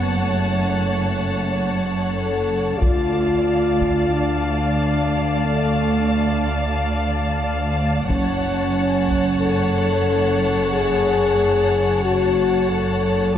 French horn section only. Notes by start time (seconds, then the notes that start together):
Already playing: B3
0.18 A3
2.15 A4
2.79 F4
4.13 D4
5.46 A3
8.07 C#4
9.39 A4
10.72 G#4
12.03 F#4
12.69 A4